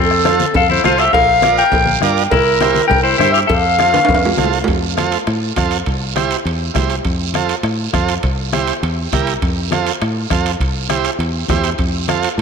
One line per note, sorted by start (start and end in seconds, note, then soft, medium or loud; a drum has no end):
0.00 0.43 F2 loud
0.00 0.52 C4 medium
0.00 0.52 A4 medium
0.11 bombo rim medium
0.25 0.46 F4 medium
0.25 0.46 A4 medium
0.25 0.46 C5 medium
0.25 bombo rim medium
0.25 high conga loud
0.25 short guiro medium
0.40 high conga medium
0.40 short guiro medium
0.54 0.78 F2 loud
0.54 0.69 A4 medium
0.54 0.69 F5 loud
0.54 bombo low medium
0.54 cowbell medium
0.54 high conga soft
0.54 low conga medium
0.54 long guiro medium
0.69 0.83 E4 medium
0.69 0.84 C5 medium
0.69 high conga medium
0.84 1.08 C2 medium
0.84 1.05 F4 medium
0.84 0.99 F4 medium
0.84 1.05 A4 medium
0.84 1.01 C5 medium
0.84 1.05 C5 medium
0.84 bombo rim medium
0.84 high conga medium
0.84 low timbale medium
0.84 short guiro medium
0.98 1.13 G4 medium
0.98 1.13 E5 loud
0.98 short guiro medium
1.13 1.61 A#1 loud
1.13 1.55 A#4 medium
1.13 1.55 F5 loud
1.13 bombo low medium
1.13 cowbell loud
1.13 high conga soft
1.13 low conga medium
1.13 long guiro medium
1.42 1.64 F4 medium
1.42 1.64 A#4 medium
1.42 1.64 D5 medium
1.42 bombo rim medium
1.42 high conga loud
1.42 short guiro medium
1.58 1.99 A#4 medium
1.58 1.99 G5 loud
1.58 short guiro medium
1.72 1.96 A#1 loud
1.72 bombo low medium
1.72 cowbell medium
1.72 high conga soft
1.72 low conga loud
1.72 long guiro medium
1.86 high conga medium
2.01 2.26 G2 medium
2.01 2.23 F4 medium
2.01 2.23 A#4 medium
2.01 2.24 D5 loud
2.01 bombo rim medium
2.01 high conga medium
2.01 short guiro medium
2.17 short guiro medium
2.31 2.79 C2 loud
2.31 2.87 E4 medium
2.31 2.86 A#4 loud
2.31 bombo low medium
2.31 cowbell loud
2.31 high conga soft
2.31 low conga medium
2.31 long guiro medium
2.60 2.82 E4 medium
2.60 2.82 G4 medium
2.60 2.82 C5 medium
2.60 bombo rim medium
2.60 high conga loud
2.60 short guiro medium
2.75 high conga medium
2.75 short guiro medium
2.88 3.14 C2 loud
2.88 3.03 A#4 medium
2.88 3.03 G5 loud
2.88 bombo low medium
2.88 cowbell medium
2.88 high conga soft
2.88 low conga medium
2.88 long guiro medium
3.03 3.17 E4 medium
3.03 3.17 C5 medium
3.18 3.44 G2 medium
3.18 3.33 E4 medium
3.18 3.41 E4 medium
3.18 3.41 G4 medium
3.18 3.31 C5 loud
3.18 3.41 C5 medium
3.18 bombo rim medium
3.18 high conga medium
3.18 low conga medium
3.18 short guiro medium
3.32 3.39 G4 medium
3.32 3.39 E5 medium
3.32 short guiro medium
3.47 3.97 F2 loud
3.47 4.48 A4 medium
3.47 4.48 F5 loud
3.47 bombo low medium
3.47 cowbell loud
3.47 high conga soft
3.47 low conga medium
3.47 long guiro medium
3.79 4.00 F4 medium
3.79 4.00 A4 medium
3.79 4.00 C5 medium
3.79 bombo rim medium
3.79 high conga medium
3.79 short guiro medium
3.94 high conga medium
3.94 high timbale medium
3.94 short guiro medium
4.05 bombo low medium
4.05 high conga soft
4.05 low conga loud
4.05 high timbale loud
4.05 long guiro medium
4.09 4.32 F2 loud
4.09 cowbell medium
4.15 high timbale loud
4.25 low timbale medium
4.37 4.62 C2 medium
4.37 4.59 F4 medium
4.37 4.59 A4 medium
4.37 4.59 C5 loud
4.37 bombo rim medium
4.37 high conga medium
4.37 short guiro medium
4.44 low timbale medium
4.53 short guiro medium
4.64 high conga soft
4.64 high timbale medium
4.64 low timbale medium
4.64 long guiro medium
4.68 5.16 F2 medium
4.68 bombo low medium
4.97 5.18 F4 medium
4.97 5.18 A4 medium
4.97 5.18 C5 medium
4.97 bombo rim medium
4.97 high conga medium
4.97 high timbale medium
4.97 short guiro medium
5.12 high timbale medium
5.12 short guiro medium
5.27 5.51 A2 medium
5.27 bombo rim medium
5.27 high conga soft
5.27 high timbale medium
5.27 long guiro medium
5.56 5.81 F2 medium
5.56 5.77 F4 medium
5.56 5.78 A4 medium
5.56 5.78 C5 medium
5.56 bombo low medium
5.56 bombo rim medium
5.56 high conga medium
5.56 high timbale medium
5.56 short guiro medium
5.71 high timbale medium
5.71 short guiro medium
5.86 6.34 C2 medium
5.86 bombo low medium
5.86 high conga soft
5.86 high timbale medium
5.86 long guiro medium
6.16 6.37 E4 medium
6.16 6.37 G4 medium
6.16 6.37 C5 medium
6.16 bombo rim medium
6.16 high conga medium
6.16 high timbale medium
6.16 short guiro medium
6.31 high timbale medium
6.31 short guiro medium
6.45 6.69 E2 medium
6.45 high conga soft
6.45 high timbale medium
6.45 long guiro medium
6.74 6.99 C2 medium
6.74 6.95 E4 medium
6.74 6.96 G4 medium
6.74 6.96 C5 medium
6.74 bombo low medium
6.74 bombo rim medium
6.74 high conga medium
6.74 high timbale medium
6.74 low timbale medium
6.74 short guiro medium
6.90 high timbale medium
6.90 short guiro medium
7.05 7.52 F2 medium
7.05 bombo low medium
7.05 high conga soft
7.05 high timbale medium
7.05 long guiro medium
7.34 7.56 F4 medium
7.34 7.56 A4 medium
7.34 7.56 C5 medium
7.34 bombo rim medium
7.34 high conga medium
7.34 high timbale medium
7.34 short guiro medium
7.49 high timbale medium
7.49 short guiro medium
7.63 7.87 A2 medium
7.63 bombo rim medium
7.63 high conga soft
7.63 high timbale medium
7.63 long guiro medium
7.93 8.17 F2 medium
7.93 8.14 F4 medium
7.93 8.14 A4 medium
7.93 8.15 C5 medium
7.93 bombo low medium
7.93 bombo rim medium
7.93 high conga medium
7.93 high timbale medium
7.93 short guiro medium
8.08 high timbale medium
8.08 short guiro medium
8.23 8.71 C2 medium
8.23 bombo low medium
8.23 high conga soft
8.23 high timbale medium
8.23 long guiro medium
8.53 8.74 E4 medium
8.53 8.74 G4 medium
8.53 8.74 C5 medium
8.53 bombo rim medium
8.53 high conga medium
8.53 high timbale medium
8.53 short guiro medium
8.67 high timbale medium
8.67 short guiro medium
8.83 9.06 E2 medium
8.83 high conga soft
8.83 high timbale medium
8.83 long guiro medium
9.12 9.36 C2 medium
9.12 9.33 E4 medium
9.12 9.34 G4 medium
9.12 9.34 A#4 medium
9.12 bombo low medium
9.12 bombo rim medium
9.12 high conga medium
9.12 high timbale medium
9.12 short guiro medium
9.27 high timbale medium
9.27 short guiro medium
9.42 9.90 F2 medium
9.42 bombo low medium
9.42 high conga soft
9.42 high timbale medium
9.42 long guiro medium
9.71 9.92 F4 medium
9.71 9.92 A4 medium
9.71 9.93 C5 medium
9.71 bombo rim medium
9.71 high conga medium
9.71 high timbale medium
9.71 short guiro medium
9.87 high timbale medium
9.87 short guiro medium
10.00 10.25 A2 medium
10.00 bombo rim medium
10.00 high conga soft
10.00 high timbale medium
10.00 long guiro medium
10.30 10.54 F2 medium
10.30 10.52 F4 medium
10.30 10.52 A4 medium
10.30 10.52 C5 medium
10.30 bombo low medium
10.30 bombo rim medium
10.30 high conga medium
10.30 high timbale medium
10.30 short guiro medium
10.46 high timbale medium
10.46 short guiro medium
10.60 11.08 C2 medium
10.60 bombo low medium
10.60 high conga soft
10.60 high timbale medium
10.60 long guiro medium
10.89 11.11 E4 medium
10.89 11.11 G4 medium
10.89 11.11 C5 loud
10.89 bombo rim medium
10.89 high conga medium
10.89 high timbale medium
10.89 short guiro medium
11.04 high timbale medium
11.04 short guiro medium
11.19 11.43 E2 medium
11.19 high conga soft
11.19 high timbale medium
11.19 long guiro medium
11.48 11.73 E2 medium
11.48 11.70 E4 medium
11.48 11.70 G4 medium
11.48 11.70 C5 medium
11.48 bombo low medium
11.48 bombo rim medium
11.48 high conga medium
11.48 high timbale medium
11.48 low timbale medium
11.48 short guiro medium
11.64 high timbale medium
11.64 short guiro medium
11.78 12.26 F2 medium
11.78 bombo low medium
11.78 high conga soft
11.78 high timbale medium
11.78 long guiro medium
12.08 12.29 F4 medium
12.08 12.29 A4 medium
12.08 12.29 C5 medium
12.08 bombo rim medium
12.08 high conga medium
12.08 high timbale medium
12.08 short guiro medium
12.23 high timbale medium
12.23 short guiro medium
12.37 12.42 A2 medium
12.37 high conga soft
12.37 long guiro medium